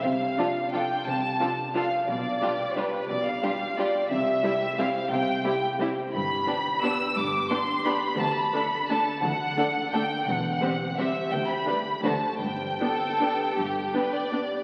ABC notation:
X:1
M:3/4
L:1/8
Q:1/4=172
K:C
V:1 name="Violin section"
f4 g2 | a3 z f2 | d4 B2 | d f3 d2 |
e4 f2 | g3 z3 | [K:G] b4 e'2 | d'2 c'2 b2 |
a b3 a2 | f4 g2 | f4 e2 | g b3 a2 |
g6- | g4 z2 |]
V:2 name="Violin section"
z2 [FA]2 [FA]2 | z2 [FA]2 [FA]2 | z2 [FG]2 [FG]2 | z2 [FG]2 [FG]2 |
z2 [EG]2 [EG]2 | z2 [EG]2 [EG]2 | [K:G] z2 [DG]2 [DG]2 | z2 [DG]2 [DG]2 |
z2 [DA]2 [DA]2 | z2 [DA]2 [DA]2 | z2 [Gc]2 [Gc]2 | z2 [GB]2 [Fc]2 |
z2 A4 | G2 B d3 |]
V:3 name="Harp"
[C,Cc] D F D d F | C, D F D d F | B,, D F G d G | B,, D F G d G |
C, C E G c G | C, C E G c G | [K:G] G,, B, D G B G | G,, B, D G B G |
D, D A D d A | D, D A D d A | E, C c G c G | D, D B G D, [Dc] |
G,, G, D B G B | G,, G, D B G B |]
V:4 name="Viola section"
z2 [F,D]2 [F,D]2 | z2 [F,D]2 [F,D]2 | z2 [G,D]2 [G,D]2 | z2 [G,D]2 [G,D]2 |
z2 [G,C]2 [G,C]2 | z2 [G,C]2 [G,C]2 | [K:G] z2 [B,D]2 [B,D]2 | z2 [B,D]2 [B,D]2 |
z2 [A,D]2 [A,D]2 | z2 [A,D]2 [A,D]2 | z2 [G,C]2 [G,C]2 | z2 [G,D]2 [A,D]2 |
z2 [B,D]2 [B,D]2 | z2 [B,D]2 [B,D]2 |]
V:5 name="Cello section" clef=bass
C,2 z4 | C,2 z4 | B,,2 z4 | B,,2 z4 |
C,2 z4 | C,2 z4 | [K:G] G,,2 z4 | G,,2 z4 |
D,,2 z4 | D,,2 z4 | E,,2 z4 | D,,2 z2 D,,2 |
G,,2 z4 | G,,2 z4 |]
V:6 name="Double bass section" clef=bass
C,,2 z4 | C,,2 z4 | B,,,2 z4 | B,,,2 z4 |
C,,2 z4 | C,,2 z4 | [K:G] G,,,2 z4 | G,,,2 z4 |
D,,2 z4 | D,,2 z4 | E,,,2 z4 | D,,2 z2 D,,2 |
G,,,2 z4 | G,,,2 z4 |]